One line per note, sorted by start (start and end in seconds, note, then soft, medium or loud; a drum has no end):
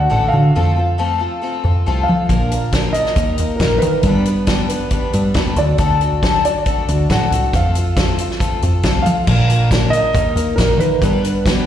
0.00 0.32 F#5 loud
0.10 0.29 A1 medium
0.10 0.32 D3 medium
0.10 0.32 A3 medium
0.10 0.33 D4 medium
0.10 0.32 F#4 medium
0.10 0.31 A4 medium
0.28 0.54 A4 medium
0.28 2.02 F5 loud
0.33 0.51 D3 loud
0.33 0.56 D4 soft
0.33 0.55 F#4 soft
0.55 1.27 F2 medium
0.55 0.77 F3 medium
0.55 0.77 A3 medium
0.55 0.77 C4 medium
0.55 0.77 F4 medium
0.55 0.75 A4 medium
0.76 0.98 C4 soft
0.76 0.97 F4 soft
0.76 0.98 A4 soft
0.98 1.20 F3 medium
0.98 1.21 A3 medium
0.98 1.21 C4 medium
0.98 1.20 F4 medium
0.98 1.18 A4 medium
1.19 1.41 C4 soft
1.19 1.42 F4 soft
1.19 1.42 A4 medium
1.42 1.64 A3 medium
1.42 1.64 C4 medium
1.42 1.64 F4 medium
1.42 1.62 A4 medium
1.64 1.82 F2 medium
1.64 1.86 C4 soft
1.64 1.86 F4 soft
1.64 1.86 A4 soft
1.86 2.04 C2 medium
1.86 2.08 F3 medium
1.86 2.08 A3 medium
1.86 2.08 C4 medium
1.86 2.08 F4 medium
1.86 2.07 A4 medium
2.03 2.67 F5 medium
2.08 2.26 F3 loud
2.08 2.30 C4 soft
2.08 2.30 F4 soft
2.08 2.30 A4 medium
2.29 3.01 A#1 medium
2.29 2.51 A#2 medium
2.29 2.51 D3 medium
2.29 2.51 F3 medium
2.29 2.52 A#3 medium
2.29 2.51 D4 medium
2.29 2.50 A#4 medium
2.29 kick medium
2.29 closed hi-hat medium
2.51 2.74 F3 soft
2.51 2.74 A#3 soft
2.51 2.74 D4 soft
2.51 2.73 A#4 soft
2.51 closed hi-hat medium
2.72 2.96 A#2 medium
2.72 2.96 D3 medium
2.72 2.96 F3 medium
2.72 2.96 A#3 medium
2.72 2.96 D4 medium
2.72 2.95 A#4 medium
2.72 kick medium
2.72 snare medium
2.72 closed hi-hat medium
2.93 3.17 A#4 soft
2.93 3.34 D#5 medium
2.93 closed hi-hat medium
2.97 3.16 F3 soft
2.97 3.16 A#3 soft
2.97 3.18 D4 soft
3.06 snare soft
3.16 3.34 D#2 medium
3.16 3.38 G3 medium
3.16 3.39 A#3 medium
3.16 3.38 D#4 medium
3.16 3.38 A#4 medium
3.16 kick medium
3.16 closed hi-hat medium
3.38 3.57 D#2 medium
3.38 3.60 A#3 soft
3.38 3.60 D#4 soft
3.38 3.60 A#4 soft
3.38 closed hi-hat medium
3.56 3.82 D#3 medium
3.56 3.82 G3 medium
3.56 3.81 A#4 medium
3.56 kick loud
3.56 closed hi-hat medium
3.60 3.78 A#1 medium
3.60 3.82 A#3 medium
3.60 3.82 D#4 medium
3.60 3.83 A#4 medium
3.60 snare medium
3.78 5.07 B4 medium
3.78 closed hi-hat medium
3.83 4.00 D#3 loud
3.83 4.06 A#3 soft
3.83 4.05 D#4 medium
3.83 4.05 A#4 soft
4.03 4.75 G2 medium
4.03 4.27 G2 medium
4.03 4.27 D3 medium
4.03 4.27 G3 medium
4.03 4.27 B3 medium
4.03 4.26 D4 medium
4.03 kick loud
4.03 closed hi-hat medium
4.08 4.26 B4 medium
4.25 4.46 G3 soft
4.25 4.46 B3 soft
4.25 4.46 D4 soft
4.25 4.46 B4 soft
4.25 closed hi-hat medium
4.47 4.69 G2 medium
4.47 4.69 D3 medium
4.47 4.69 G3 medium
4.47 4.69 B3 medium
4.47 4.69 D4 medium
4.47 4.68 B4 medium
4.47 kick medium
4.47 snare loud
4.47 closed hi-hat medium
4.69 4.90 G3 soft
4.69 4.90 B3 soft
4.69 4.92 D4 soft
4.69 4.91 B4 medium
4.69 closed hi-hat medium
4.90 5.13 G3 medium
4.90 5.13 B3 medium
4.90 5.13 D4 medium
4.90 5.11 B4 medium
4.90 kick medium
4.90 closed hi-hat medium
5.13 5.31 G2 medium
5.13 5.35 G3 soft
5.13 5.36 B3 soft
5.13 5.35 D4 soft
5.13 5.35 B4 soft
5.13 closed hi-hat medium
5.34 5.53 D#2 medium
5.34 5.57 G2 medium
5.34 5.58 D3 medium
5.34 5.57 G3 medium
5.34 5.58 B3 medium
5.34 5.57 D4 medium
5.34 5.56 B4 medium
5.34 kick loud
5.34 snare loud
5.34 closed hi-hat medium
5.56 5.74 D2 medium
5.56 5.79 D4 soft
5.56 5.79 F#4 medium
5.56 5.79 A4 medium
5.56 6.44 D5 medium
5.56 closed hi-hat soft
5.78 6.50 D2 medium
5.78 6.01 D3 medium
5.78 6.01 A3 medium
5.78 6.01 D4 medium
5.78 6.01 F#4 medium
5.78 6.00 A4 medium
5.78 kick loud
5.78 closed hi-hat medium
6.01 6.22 D4 soft
6.01 6.23 F#4 soft
6.01 6.22 A4 soft
6.01 closed hi-hat medium
6.22 6.44 D3 medium
6.22 6.44 A3 medium
6.22 6.45 D4 medium
6.22 6.45 F#4 medium
6.22 6.43 A4 medium
6.22 kick medium
6.22 snare loud
6.22 closed hi-hat medium
6.45 6.66 D4 soft
6.45 6.67 F#4 soft
6.45 6.66 A4 soft
6.45 7.06 D5 medium
6.45 closed hi-hat medium
6.66 6.88 A3 medium
6.66 6.89 D4 medium
6.66 6.89 F#4 medium
6.66 6.87 A4 medium
6.66 kick medium
6.66 closed hi-hat medium
6.88 7.06 D2 medium
6.88 7.09 D4 soft
6.88 7.09 F#4 soft
6.88 7.10 A4 soft
6.88 closed hi-hat medium
7.09 7.28 A1 loud
7.09 7.31 D3 medium
7.09 7.32 A3 medium
7.09 7.32 D4 medium
7.09 7.32 F#4 medium
7.09 7.31 A4 medium
7.09 7.51 F#5 medium
7.09 kick medium
7.09 snare loud
7.09 closed hi-hat medium
7.31 7.49 C2 loud
7.31 7.53 D4 soft
7.31 7.54 F#4 soft
7.31 7.54 A4 medium
7.31 closed hi-hat medium
7.53 8.25 F2 medium
7.53 7.75 F3 medium
7.53 7.75 A3 medium
7.53 7.75 C4 medium
7.53 7.76 F4 medium
7.53 7.75 A4 medium
7.53 7.95 F5 medium
7.53 kick loud
7.53 closed hi-hat medium
7.75 7.96 C4 soft
7.75 7.97 F4 soft
7.75 7.97 A4 soft
7.75 closed hi-hat medium
7.96 8.19 F3 medium
7.96 8.19 A3 medium
7.96 8.19 C4 medium
7.96 8.19 F4 medium
7.96 8.19 A4 medium
7.96 kick loud
7.96 snare loud
7.96 closed hi-hat medium
8.18 8.39 C4 soft
8.18 8.40 F4 medium
8.18 8.40 A4 medium
8.18 closed hi-hat medium
8.31 snare soft
8.40 8.62 A3 medium
8.40 8.62 C4 medium
8.40 8.63 F4 medium
8.40 8.62 A4 medium
8.40 kick medium
8.40 closed hi-hat medium
8.62 8.81 F2 medium
8.62 8.85 C4 soft
8.62 8.85 F4 soft
8.62 8.85 A4 medium
8.62 closed hi-hat soft
8.83 9.02 C2 loud
8.83 9.06 F3 medium
8.83 9.07 A3 medium
8.83 9.06 C4 medium
8.83 9.06 F4 medium
8.83 9.04 A4 medium
8.83 kick loud
8.83 snare loud
8.83 closed hi-hat medium
9.02 9.28 A4 medium
9.02 9.66 F5 medium
9.02 closed hi-hat medium
9.06 9.24 F3 medium
9.06 9.29 C4 soft
9.06 9.29 F4 medium
9.27 9.99 A#2 medium
9.27 9.50 A#2 medium
9.27 9.50 D3 medium
9.27 9.49 F3 medium
9.27 9.49 A#3 medium
9.27 9.48 D4 medium
9.27 9.47 A#4 medium
9.27 kick loud
9.27 crash medium
9.48 9.71 F3 soft
9.48 9.71 A#3 soft
9.48 9.70 D4 soft
9.48 9.71 A#4 soft
9.48 closed hi-hat medium
9.71 9.93 A#2 medium
9.71 9.93 D3 medium
9.71 9.93 F3 medium
9.71 9.93 A#3 medium
9.71 9.92 D4 medium
9.71 9.92 A#4 loud
9.71 kick loud
9.71 snare loud
9.71 closed hi-hat medium
9.90 10.14 D4 soft
9.90 10.14 A#4 medium
9.90 10.32 D#5 loud
9.90 closed hi-hat medium
9.94 10.13 F3 soft
9.94 10.12 A#3 soft
10.13 10.33 D#2 medium
10.13 10.36 G3 soft
10.13 10.36 A#3 medium
10.13 10.35 D#4 medium
10.13 10.34 A#4 medium
10.13 kick loud
10.13 closed hi-hat medium
10.36 10.54 D#2 loud
10.36 10.57 A#3 soft
10.36 10.58 D#4 soft
10.36 10.57 A#4 soft
10.36 closed hi-hat medium
10.56 10.76 A#1 medium
10.56 10.80 D#3 medium
10.56 10.80 G3 medium
10.56 10.80 A#3 medium
10.56 10.80 D#4 medium
10.56 10.80 A#4 medium
10.56 10.79 A#4 medium
10.56 kick loud
10.56 snare loud
10.56 closed hi-hat medium
10.78 10.97 D#3 loud
10.78 11.03 D#4 soft
10.78 11.02 A#4 medium
10.78 11.66 B4 medium
10.78 closed hi-hat medium
10.82 11.03 A#3 soft
11.02 11.66 G2 medium
11.02 11.25 G2 medium
11.02 11.25 D3 medium
11.02 11.25 G3 medium
11.02 11.24 B3 medium
11.02 11.24 D4 medium
11.02 11.23 B4 medium
11.02 kick loud
11.02 closed hi-hat medium
11.24 11.46 G3 soft
11.24 11.46 B3 soft
11.24 11.46 D4 soft
11.24 11.46 B4 medium
11.24 closed hi-hat medium
11.46 11.66 G2 medium
11.46 11.66 D3 medium
11.46 11.66 G3 medium
11.46 11.66 B3 medium
11.46 11.66 D4 medium
11.46 11.66 B4 medium
11.46 kick loud
11.46 snare loud
11.46 closed hi-hat medium